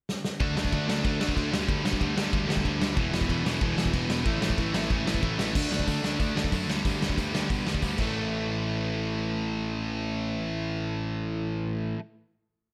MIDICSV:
0, 0, Header, 1, 4, 480
1, 0, Start_track
1, 0, Tempo, 321716
1, 594, Time_signature, 4, 2, 24, 8
1, 7794, Tempo, 324851
1, 18887, End_track
2, 0, Start_track
2, 0, Title_t, "Overdriven electric guitar"
2, 0, Program_c, 0, 29
2, 603, Note_on_c, 0, 50, 91
2, 618, Note_on_c, 0, 57, 104
2, 625, Note_on_c, 0, 62, 100
2, 826, Note_off_c, 0, 57, 0
2, 827, Note_off_c, 0, 62, 0
2, 833, Note_on_c, 0, 62, 84
2, 844, Note_on_c, 0, 57, 78
2, 856, Note_off_c, 0, 50, 0
2, 862, Note_on_c, 0, 50, 69
2, 1087, Note_off_c, 0, 57, 0
2, 1088, Note_off_c, 0, 50, 0
2, 1094, Note_on_c, 0, 50, 97
2, 1100, Note_off_c, 0, 62, 0
2, 1105, Note_on_c, 0, 57, 100
2, 1106, Note_on_c, 0, 62, 108
2, 1316, Note_off_c, 0, 57, 0
2, 1322, Note_off_c, 0, 62, 0
2, 1328, Note_on_c, 0, 62, 91
2, 1334, Note_on_c, 0, 57, 85
2, 1340, Note_off_c, 0, 50, 0
2, 1346, Note_on_c, 0, 50, 81
2, 1530, Note_off_c, 0, 50, 0
2, 1535, Note_off_c, 0, 57, 0
2, 1548, Note_on_c, 0, 50, 113
2, 1553, Note_on_c, 0, 57, 108
2, 1554, Note_off_c, 0, 62, 0
2, 1572, Note_on_c, 0, 62, 116
2, 1783, Note_off_c, 0, 62, 0
2, 1791, Note_off_c, 0, 57, 0
2, 1801, Note_on_c, 0, 62, 102
2, 1804, Note_off_c, 0, 50, 0
2, 1809, Note_on_c, 0, 57, 88
2, 1822, Note_on_c, 0, 50, 82
2, 2011, Note_off_c, 0, 50, 0
2, 2029, Note_on_c, 0, 50, 94
2, 2031, Note_off_c, 0, 57, 0
2, 2036, Note_off_c, 0, 62, 0
2, 2049, Note_on_c, 0, 57, 104
2, 2054, Note_on_c, 0, 62, 93
2, 2247, Note_off_c, 0, 50, 0
2, 2250, Note_on_c, 0, 43, 94
2, 2265, Note_on_c, 0, 50, 93
2, 2266, Note_off_c, 0, 57, 0
2, 2269, Note_off_c, 0, 62, 0
2, 2273, Note_on_c, 0, 55, 101
2, 2492, Note_off_c, 0, 55, 0
2, 2503, Note_off_c, 0, 50, 0
2, 2510, Note_on_c, 0, 55, 103
2, 2511, Note_off_c, 0, 43, 0
2, 2521, Note_on_c, 0, 50, 95
2, 2529, Note_on_c, 0, 43, 86
2, 2726, Note_off_c, 0, 43, 0
2, 2741, Note_off_c, 0, 50, 0
2, 2743, Note_on_c, 0, 43, 93
2, 2746, Note_off_c, 0, 55, 0
2, 2759, Note_on_c, 0, 50, 86
2, 2764, Note_on_c, 0, 55, 93
2, 2961, Note_off_c, 0, 55, 0
2, 2973, Note_off_c, 0, 50, 0
2, 2979, Note_on_c, 0, 55, 109
2, 2984, Note_off_c, 0, 43, 0
2, 2991, Note_on_c, 0, 50, 101
2, 3002, Note_on_c, 0, 43, 83
2, 3196, Note_off_c, 0, 43, 0
2, 3210, Note_off_c, 0, 50, 0
2, 3214, Note_on_c, 0, 43, 80
2, 3224, Note_off_c, 0, 55, 0
2, 3228, Note_on_c, 0, 50, 84
2, 3242, Note_on_c, 0, 55, 96
2, 3445, Note_off_c, 0, 55, 0
2, 3452, Note_off_c, 0, 50, 0
2, 3463, Note_on_c, 0, 55, 126
2, 3469, Note_off_c, 0, 43, 0
2, 3470, Note_on_c, 0, 50, 96
2, 3487, Note_on_c, 0, 43, 91
2, 3663, Note_off_c, 0, 43, 0
2, 3679, Note_off_c, 0, 50, 0
2, 3680, Note_on_c, 0, 43, 94
2, 3694, Note_off_c, 0, 55, 0
2, 3697, Note_on_c, 0, 50, 90
2, 3712, Note_on_c, 0, 55, 103
2, 3921, Note_off_c, 0, 55, 0
2, 3923, Note_off_c, 0, 50, 0
2, 3938, Note_on_c, 0, 55, 101
2, 3941, Note_off_c, 0, 43, 0
2, 3941, Note_on_c, 0, 50, 97
2, 3959, Note_on_c, 0, 43, 88
2, 4151, Note_off_c, 0, 43, 0
2, 4160, Note_off_c, 0, 50, 0
2, 4165, Note_off_c, 0, 55, 0
2, 4169, Note_on_c, 0, 43, 85
2, 4178, Note_on_c, 0, 50, 85
2, 4183, Note_on_c, 0, 55, 95
2, 4403, Note_off_c, 0, 43, 0
2, 4406, Note_off_c, 0, 50, 0
2, 4409, Note_on_c, 0, 40, 91
2, 4412, Note_off_c, 0, 55, 0
2, 4412, Note_on_c, 0, 47, 99
2, 4430, Note_on_c, 0, 52, 122
2, 4650, Note_off_c, 0, 52, 0
2, 4651, Note_off_c, 0, 47, 0
2, 4656, Note_off_c, 0, 40, 0
2, 4656, Note_on_c, 0, 52, 92
2, 4668, Note_on_c, 0, 47, 90
2, 4674, Note_on_c, 0, 40, 77
2, 4867, Note_off_c, 0, 40, 0
2, 4881, Note_off_c, 0, 47, 0
2, 4885, Note_on_c, 0, 40, 101
2, 4899, Note_on_c, 0, 47, 108
2, 4904, Note_off_c, 0, 52, 0
2, 4910, Note_on_c, 0, 52, 106
2, 5131, Note_off_c, 0, 47, 0
2, 5134, Note_off_c, 0, 52, 0
2, 5140, Note_on_c, 0, 52, 97
2, 5147, Note_off_c, 0, 40, 0
2, 5148, Note_on_c, 0, 47, 87
2, 5165, Note_on_c, 0, 40, 76
2, 5365, Note_off_c, 0, 40, 0
2, 5373, Note_off_c, 0, 47, 0
2, 5383, Note_on_c, 0, 40, 104
2, 5391, Note_off_c, 0, 52, 0
2, 5391, Note_on_c, 0, 47, 104
2, 5409, Note_on_c, 0, 52, 125
2, 5615, Note_off_c, 0, 52, 0
2, 5633, Note_off_c, 0, 47, 0
2, 5633, Note_on_c, 0, 52, 101
2, 5641, Note_off_c, 0, 40, 0
2, 5651, Note_on_c, 0, 47, 99
2, 5659, Note_on_c, 0, 40, 78
2, 5843, Note_off_c, 0, 40, 0
2, 5848, Note_off_c, 0, 47, 0
2, 5861, Note_on_c, 0, 40, 101
2, 5865, Note_off_c, 0, 52, 0
2, 5866, Note_on_c, 0, 47, 92
2, 5883, Note_on_c, 0, 52, 117
2, 6084, Note_off_c, 0, 52, 0
2, 6097, Note_off_c, 0, 47, 0
2, 6102, Note_on_c, 0, 52, 93
2, 6110, Note_off_c, 0, 40, 0
2, 6115, Note_on_c, 0, 47, 87
2, 6128, Note_on_c, 0, 40, 77
2, 6333, Note_off_c, 0, 52, 0
2, 6339, Note_off_c, 0, 47, 0
2, 6345, Note_off_c, 0, 40, 0
2, 6345, Note_on_c, 0, 45, 99
2, 6362, Note_on_c, 0, 52, 99
2, 6378, Note_on_c, 0, 57, 109
2, 6571, Note_off_c, 0, 57, 0
2, 6581, Note_off_c, 0, 52, 0
2, 6589, Note_on_c, 0, 57, 88
2, 6598, Note_off_c, 0, 45, 0
2, 6599, Note_on_c, 0, 52, 83
2, 6616, Note_on_c, 0, 45, 70
2, 6822, Note_off_c, 0, 45, 0
2, 6836, Note_off_c, 0, 52, 0
2, 6840, Note_on_c, 0, 45, 92
2, 6841, Note_off_c, 0, 57, 0
2, 6854, Note_on_c, 0, 52, 100
2, 6859, Note_on_c, 0, 57, 100
2, 7057, Note_off_c, 0, 57, 0
2, 7069, Note_off_c, 0, 52, 0
2, 7075, Note_on_c, 0, 57, 83
2, 7080, Note_off_c, 0, 45, 0
2, 7087, Note_on_c, 0, 52, 71
2, 7098, Note_on_c, 0, 45, 67
2, 7310, Note_off_c, 0, 45, 0
2, 7320, Note_off_c, 0, 52, 0
2, 7328, Note_on_c, 0, 45, 99
2, 7330, Note_off_c, 0, 57, 0
2, 7338, Note_on_c, 0, 52, 110
2, 7348, Note_on_c, 0, 57, 112
2, 7538, Note_off_c, 0, 57, 0
2, 7543, Note_off_c, 0, 52, 0
2, 7555, Note_on_c, 0, 57, 98
2, 7557, Note_off_c, 0, 45, 0
2, 7561, Note_on_c, 0, 52, 94
2, 7575, Note_on_c, 0, 45, 80
2, 7776, Note_off_c, 0, 45, 0
2, 7789, Note_off_c, 0, 52, 0
2, 7794, Note_on_c, 0, 45, 97
2, 7803, Note_off_c, 0, 57, 0
2, 7807, Note_on_c, 0, 52, 98
2, 7821, Note_on_c, 0, 57, 108
2, 8019, Note_off_c, 0, 57, 0
2, 8027, Note_off_c, 0, 52, 0
2, 8037, Note_on_c, 0, 57, 83
2, 8038, Note_off_c, 0, 45, 0
2, 8045, Note_on_c, 0, 52, 74
2, 8055, Note_on_c, 0, 45, 79
2, 8261, Note_off_c, 0, 57, 0
2, 8265, Note_off_c, 0, 52, 0
2, 8270, Note_off_c, 0, 45, 0
2, 8293, Note_on_c, 0, 50, 88
2, 8308, Note_on_c, 0, 57, 102
2, 8314, Note_on_c, 0, 62, 106
2, 8500, Note_off_c, 0, 62, 0
2, 8501, Note_off_c, 0, 57, 0
2, 8506, Note_on_c, 0, 62, 93
2, 8519, Note_on_c, 0, 57, 80
2, 8523, Note_off_c, 0, 50, 0
2, 8529, Note_on_c, 0, 50, 69
2, 8739, Note_off_c, 0, 57, 0
2, 8746, Note_off_c, 0, 50, 0
2, 8752, Note_on_c, 0, 50, 87
2, 8757, Note_on_c, 0, 57, 90
2, 8767, Note_off_c, 0, 62, 0
2, 8773, Note_on_c, 0, 62, 96
2, 8985, Note_off_c, 0, 62, 0
2, 8995, Note_off_c, 0, 57, 0
2, 9003, Note_on_c, 0, 62, 95
2, 9005, Note_off_c, 0, 50, 0
2, 9013, Note_on_c, 0, 57, 87
2, 9023, Note_on_c, 0, 50, 82
2, 9223, Note_off_c, 0, 50, 0
2, 9232, Note_off_c, 0, 57, 0
2, 9238, Note_off_c, 0, 62, 0
2, 9241, Note_on_c, 0, 50, 85
2, 9250, Note_on_c, 0, 57, 92
2, 9256, Note_on_c, 0, 62, 93
2, 9458, Note_off_c, 0, 62, 0
2, 9476, Note_off_c, 0, 57, 0
2, 9476, Note_on_c, 0, 62, 104
2, 9479, Note_off_c, 0, 50, 0
2, 9494, Note_on_c, 0, 57, 96
2, 9497, Note_on_c, 0, 50, 87
2, 9717, Note_off_c, 0, 50, 0
2, 9719, Note_off_c, 0, 57, 0
2, 9734, Note_on_c, 0, 50, 85
2, 9737, Note_on_c, 0, 57, 89
2, 9738, Note_off_c, 0, 62, 0
2, 9760, Note_on_c, 0, 62, 87
2, 9948, Note_off_c, 0, 50, 0
2, 9950, Note_off_c, 0, 57, 0
2, 9961, Note_off_c, 0, 62, 0
2, 9963, Note_on_c, 0, 43, 81
2, 9979, Note_on_c, 0, 50, 87
2, 9987, Note_on_c, 0, 55, 94
2, 10188, Note_off_c, 0, 55, 0
2, 10200, Note_off_c, 0, 43, 0
2, 10201, Note_off_c, 0, 50, 0
2, 10206, Note_on_c, 0, 55, 97
2, 10218, Note_on_c, 0, 43, 81
2, 10219, Note_on_c, 0, 50, 89
2, 10420, Note_off_c, 0, 43, 0
2, 10430, Note_off_c, 0, 50, 0
2, 10437, Note_on_c, 0, 43, 81
2, 10439, Note_off_c, 0, 55, 0
2, 10447, Note_on_c, 0, 50, 84
2, 10457, Note_on_c, 0, 55, 86
2, 10665, Note_off_c, 0, 55, 0
2, 10674, Note_off_c, 0, 50, 0
2, 10682, Note_on_c, 0, 55, 86
2, 10689, Note_off_c, 0, 43, 0
2, 10692, Note_on_c, 0, 50, 79
2, 10707, Note_on_c, 0, 43, 72
2, 10894, Note_off_c, 0, 43, 0
2, 10907, Note_off_c, 0, 50, 0
2, 10911, Note_on_c, 0, 43, 87
2, 10913, Note_off_c, 0, 55, 0
2, 10924, Note_on_c, 0, 50, 93
2, 10930, Note_on_c, 0, 55, 85
2, 11132, Note_off_c, 0, 55, 0
2, 11137, Note_off_c, 0, 50, 0
2, 11148, Note_off_c, 0, 43, 0
2, 11150, Note_on_c, 0, 55, 94
2, 11154, Note_on_c, 0, 50, 93
2, 11166, Note_on_c, 0, 43, 76
2, 11382, Note_off_c, 0, 43, 0
2, 11387, Note_off_c, 0, 50, 0
2, 11400, Note_off_c, 0, 55, 0
2, 11400, Note_on_c, 0, 43, 99
2, 11405, Note_on_c, 0, 50, 100
2, 11417, Note_on_c, 0, 55, 105
2, 11611, Note_off_c, 0, 55, 0
2, 11628, Note_off_c, 0, 50, 0
2, 11629, Note_on_c, 0, 55, 87
2, 11634, Note_off_c, 0, 43, 0
2, 11646, Note_on_c, 0, 50, 78
2, 11652, Note_on_c, 0, 43, 71
2, 11849, Note_off_c, 0, 50, 0
2, 11855, Note_on_c, 0, 45, 73
2, 11871, Note_off_c, 0, 55, 0
2, 11883, Note_off_c, 0, 43, 0
2, 11887, Note_on_c, 0, 52, 88
2, 11916, Note_on_c, 0, 57, 85
2, 17746, Note_off_c, 0, 45, 0
2, 17778, Note_off_c, 0, 52, 0
2, 17807, Note_off_c, 0, 57, 0
2, 18887, End_track
3, 0, Start_track
3, 0, Title_t, "Picked electric bass"
3, 0, Program_c, 1, 34
3, 603, Note_on_c, 1, 38, 100
3, 1013, Note_off_c, 1, 38, 0
3, 1076, Note_on_c, 1, 38, 95
3, 1282, Note_off_c, 1, 38, 0
3, 1308, Note_on_c, 1, 38, 87
3, 1518, Note_off_c, 1, 38, 0
3, 1561, Note_on_c, 1, 38, 92
3, 1765, Note_off_c, 1, 38, 0
3, 1807, Note_on_c, 1, 38, 87
3, 2008, Note_off_c, 1, 38, 0
3, 2038, Note_on_c, 1, 38, 98
3, 2243, Note_off_c, 1, 38, 0
3, 2281, Note_on_c, 1, 38, 86
3, 2484, Note_off_c, 1, 38, 0
3, 2513, Note_on_c, 1, 38, 106
3, 2927, Note_off_c, 1, 38, 0
3, 2996, Note_on_c, 1, 38, 96
3, 3201, Note_off_c, 1, 38, 0
3, 3226, Note_on_c, 1, 38, 92
3, 3435, Note_off_c, 1, 38, 0
3, 3471, Note_on_c, 1, 38, 98
3, 3678, Note_off_c, 1, 38, 0
3, 3699, Note_on_c, 1, 38, 88
3, 3911, Note_off_c, 1, 38, 0
3, 3944, Note_on_c, 1, 38, 96
3, 4154, Note_off_c, 1, 38, 0
3, 4184, Note_on_c, 1, 38, 85
3, 4394, Note_off_c, 1, 38, 0
3, 4430, Note_on_c, 1, 28, 93
3, 4845, Note_off_c, 1, 28, 0
3, 4904, Note_on_c, 1, 28, 95
3, 5114, Note_off_c, 1, 28, 0
3, 5136, Note_on_c, 1, 28, 85
3, 5350, Note_off_c, 1, 28, 0
3, 5392, Note_on_c, 1, 28, 94
3, 5599, Note_off_c, 1, 28, 0
3, 5617, Note_on_c, 1, 28, 92
3, 5830, Note_off_c, 1, 28, 0
3, 5869, Note_on_c, 1, 28, 94
3, 6077, Note_off_c, 1, 28, 0
3, 6100, Note_on_c, 1, 28, 88
3, 6312, Note_off_c, 1, 28, 0
3, 6346, Note_on_c, 1, 33, 97
3, 6764, Note_off_c, 1, 33, 0
3, 6828, Note_on_c, 1, 33, 103
3, 7038, Note_off_c, 1, 33, 0
3, 7074, Note_on_c, 1, 33, 91
3, 7281, Note_off_c, 1, 33, 0
3, 7313, Note_on_c, 1, 33, 96
3, 7521, Note_off_c, 1, 33, 0
3, 7545, Note_on_c, 1, 33, 83
3, 7757, Note_off_c, 1, 33, 0
3, 7799, Note_on_c, 1, 33, 101
3, 8004, Note_off_c, 1, 33, 0
3, 8035, Note_on_c, 1, 33, 81
3, 8241, Note_off_c, 1, 33, 0
3, 8279, Note_on_c, 1, 38, 99
3, 8467, Note_off_c, 1, 38, 0
3, 8500, Note_on_c, 1, 38, 84
3, 8695, Note_off_c, 1, 38, 0
3, 8751, Note_on_c, 1, 38, 91
3, 8942, Note_off_c, 1, 38, 0
3, 8976, Note_on_c, 1, 38, 85
3, 9173, Note_off_c, 1, 38, 0
3, 9231, Note_on_c, 1, 38, 90
3, 9422, Note_off_c, 1, 38, 0
3, 9467, Note_on_c, 1, 38, 84
3, 9660, Note_off_c, 1, 38, 0
3, 9712, Note_on_c, 1, 42, 85
3, 9902, Note_off_c, 1, 42, 0
3, 9938, Note_on_c, 1, 38, 89
3, 10134, Note_off_c, 1, 38, 0
3, 10194, Note_on_c, 1, 38, 94
3, 10383, Note_off_c, 1, 38, 0
3, 10432, Note_on_c, 1, 38, 86
3, 10623, Note_off_c, 1, 38, 0
3, 10678, Note_on_c, 1, 38, 90
3, 11057, Note_off_c, 1, 38, 0
3, 11155, Note_on_c, 1, 47, 87
3, 11345, Note_off_c, 1, 47, 0
3, 11397, Note_on_c, 1, 38, 86
3, 11586, Note_off_c, 1, 38, 0
3, 11636, Note_on_c, 1, 38, 92
3, 11826, Note_off_c, 1, 38, 0
3, 11874, Note_on_c, 1, 33, 81
3, 17706, Note_off_c, 1, 33, 0
3, 18887, End_track
4, 0, Start_track
4, 0, Title_t, "Drums"
4, 133, Note_on_c, 9, 38, 72
4, 282, Note_off_c, 9, 38, 0
4, 365, Note_on_c, 9, 38, 90
4, 514, Note_off_c, 9, 38, 0
4, 601, Note_on_c, 9, 49, 67
4, 602, Note_on_c, 9, 36, 124
4, 750, Note_off_c, 9, 49, 0
4, 751, Note_off_c, 9, 36, 0
4, 852, Note_on_c, 9, 38, 116
4, 964, Note_on_c, 9, 36, 97
4, 1001, Note_off_c, 9, 38, 0
4, 1081, Note_on_c, 9, 49, 66
4, 1082, Note_off_c, 9, 36, 0
4, 1082, Note_on_c, 9, 36, 95
4, 1230, Note_off_c, 9, 49, 0
4, 1231, Note_off_c, 9, 36, 0
4, 1337, Note_on_c, 9, 38, 127
4, 1486, Note_off_c, 9, 38, 0
4, 1562, Note_on_c, 9, 36, 105
4, 1564, Note_on_c, 9, 49, 62
4, 1711, Note_off_c, 9, 36, 0
4, 1713, Note_off_c, 9, 49, 0
4, 1805, Note_on_c, 9, 38, 119
4, 1919, Note_on_c, 9, 36, 83
4, 1954, Note_off_c, 9, 38, 0
4, 2040, Note_off_c, 9, 36, 0
4, 2040, Note_on_c, 9, 36, 96
4, 2047, Note_on_c, 9, 49, 68
4, 2189, Note_off_c, 9, 36, 0
4, 2196, Note_off_c, 9, 49, 0
4, 2291, Note_on_c, 9, 38, 116
4, 2440, Note_off_c, 9, 38, 0
4, 2515, Note_on_c, 9, 36, 116
4, 2522, Note_on_c, 9, 49, 64
4, 2664, Note_off_c, 9, 36, 0
4, 2671, Note_off_c, 9, 49, 0
4, 2766, Note_on_c, 9, 38, 117
4, 2877, Note_on_c, 9, 36, 90
4, 2916, Note_off_c, 9, 38, 0
4, 2998, Note_off_c, 9, 36, 0
4, 2998, Note_on_c, 9, 36, 102
4, 3004, Note_on_c, 9, 49, 63
4, 3148, Note_off_c, 9, 36, 0
4, 3153, Note_off_c, 9, 49, 0
4, 3247, Note_on_c, 9, 38, 127
4, 3396, Note_off_c, 9, 38, 0
4, 3477, Note_on_c, 9, 36, 106
4, 3484, Note_on_c, 9, 49, 64
4, 3627, Note_off_c, 9, 36, 0
4, 3633, Note_off_c, 9, 49, 0
4, 3731, Note_on_c, 9, 38, 108
4, 3833, Note_on_c, 9, 36, 85
4, 3881, Note_off_c, 9, 38, 0
4, 3953, Note_off_c, 9, 36, 0
4, 3953, Note_on_c, 9, 36, 94
4, 3959, Note_on_c, 9, 49, 61
4, 4103, Note_off_c, 9, 36, 0
4, 4108, Note_off_c, 9, 49, 0
4, 4201, Note_on_c, 9, 38, 122
4, 4350, Note_off_c, 9, 38, 0
4, 4427, Note_on_c, 9, 49, 65
4, 4430, Note_on_c, 9, 36, 117
4, 4576, Note_off_c, 9, 49, 0
4, 4579, Note_off_c, 9, 36, 0
4, 4679, Note_on_c, 9, 38, 103
4, 4793, Note_on_c, 9, 36, 97
4, 4828, Note_off_c, 9, 38, 0
4, 4913, Note_off_c, 9, 36, 0
4, 4913, Note_on_c, 9, 36, 96
4, 4920, Note_on_c, 9, 49, 63
4, 5062, Note_off_c, 9, 36, 0
4, 5069, Note_off_c, 9, 49, 0
4, 5167, Note_on_c, 9, 38, 118
4, 5316, Note_off_c, 9, 38, 0
4, 5388, Note_on_c, 9, 49, 62
4, 5390, Note_on_c, 9, 36, 110
4, 5538, Note_off_c, 9, 49, 0
4, 5540, Note_off_c, 9, 36, 0
4, 5640, Note_on_c, 9, 38, 108
4, 5753, Note_on_c, 9, 36, 91
4, 5789, Note_off_c, 9, 38, 0
4, 5870, Note_on_c, 9, 49, 69
4, 5871, Note_off_c, 9, 36, 0
4, 5871, Note_on_c, 9, 36, 105
4, 6019, Note_off_c, 9, 49, 0
4, 6021, Note_off_c, 9, 36, 0
4, 6116, Note_on_c, 9, 38, 114
4, 6265, Note_off_c, 9, 38, 0
4, 6349, Note_on_c, 9, 49, 70
4, 6352, Note_on_c, 9, 36, 121
4, 6498, Note_off_c, 9, 49, 0
4, 6501, Note_off_c, 9, 36, 0
4, 6596, Note_on_c, 9, 38, 117
4, 6714, Note_on_c, 9, 36, 90
4, 6745, Note_off_c, 9, 38, 0
4, 6832, Note_on_c, 9, 49, 65
4, 6833, Note_off_c, 9, 36, 0
4, 6833, Note_on_c, 9, 36, 99
4, 6982, Note_off_c, 9, 36, 0
4, 6982, Note_off_c, 9, 49, 0
4, 7077, Note_on_c, 9, 38, 121
4, 7227, Note_off_c, 9, 38, 0
4, 7315, Note_on_c, 9, 49, 57
4, 7317, Note_on_c, 9, 36, 109
4, 7465, Note_off_c, 9, 49, 0
4, 7466, Note_off_c, 9, 36, 0
4, 7571, Note_on_c, 9, 38, 115
4, 7676, Note_on_c, 9, 36, 90
4, 7720, Note_off_c, 9, 38, 0
4, 7798, Note_on_c, 9, 49, 59
4, 7800, Note_off_c, 9, 36, 0
4, 7800, Note_on_c, 9, 36, 99
4, 7946, Note_off_c, 9, 49, 0
4, 7948, Note_off_c, 9, 36, 0
4, 8043, Note_on_c, 9, 38, 116
4, 8191, Note_off_c, 9, 38, 0
4, 8281, Note_on_c, 9, 36, 120
4, 8286, Note_on_c, 9, 57, 117
4, 8428, Note_off_c, 9, 36, 0
4, 8433, Note_off_c, 9, 57, 0
4, 8528, Note_on_c, 9, 38, 104
4, 8637, Note_on_c, 9, 36, 93
4, 8676, Note_off_c, 9, 38, 0
4, 8756, Note_on_c, 9, 46, 55
4, 8757, Note_off_c, 9, 36, 0
4, 8757, Note_on_c, 9, 36, 99
4, 8903, Note_off_c, 9, 46, 0
4, 8905, Note_off_c, 9, 36, 0
4, 9002, Note_on_c, 9, 38, 115
4, 9150, Note_off_c, 9, 38, 0
4, 9234, Note_on_c, 9, 36, 100
4, 9234, Note_on_c, 9, 46, 53
4, 9382, Note_off_c, 9, 36, 0
4, 9382, Note_off_c, 9, 46, 0
4, 9489, Note_on_c, 9, 38, 109
4, 9596, Note_on_c, 9, 36, 87
4, 9637, Note_off_c, 9, 38, 0
4, 9709, Note_on_c, 9, 46, 60
4, 9714, Note_off_c, 9, 36, 0
4, 9714, Note_on_c, 9, 36, 96
4, 9857, Note_off_c, 9, 46, 0
4, 9861, Note_off_c, 9, 36, 0
4, 9969, Note_on_c, 9, 38, 108
4, 10117, Note_off_c, 9, 38, 0
4, 10198, Note_on_c, 9, 36, 107
4, 10200, Note_on_c, 9, 46, 60
4, 10346, Note_off_c, 9, 36, 0
4, 10348, Note_off_c, 9, 46, 0
4, 10454, Note_on_c, 9, 38, 107
4, 10559, Note_on_c, 9, 36, 86
4, 10601, Note_off_c, 9, 38, 0
4, 10679, Note_off_c, 9, 36, 0
4, 10679, Note_on_c, 9, 36, 86
4, 10682, Note_on_c, 9, 46, 57
4, 10827, Note_off_c, 9, 36, 0
4, 10830, Note_off_c, 9, 46, 0
4, 10931, Note_on_c, 9, 38, 109
4, 11079, Note_off_c, 9, 38, 0
4, 11156, Note_on_c, 9, 46, 51
4, 11159, Note_on_c, 9, 36, 101
4, 11304, Note_off_c, 9, 46, 0
4, 11307, Note_off_c, 9, 36, 0
4, 11403, Note_on_c, 9, 38, 107
4, 11518, Note_on_c, 9, 36, 82
4, 11551, Note_off_c, 9, 38, 0
4, 11630, Note_on_c, 9, 46, 51
4, 11639, Note_off_c, 9, 36, 0
4, 11639, Note_on_c, 9, 36, 92
4, 11778, Note_off_c, 9, 46, 0
4, 11787, Note_off_c, 9, 36, 0
4, 11866, Note_on_c, 9, 57, 80
4, 11878, Note_on_c, 9, 36, 100
4, 12013, Note_off_c, 9, 57, 0
4, 12025, Note_off_c, 9, 36, 0
4, 18887, End_track
0, 0, End_of_file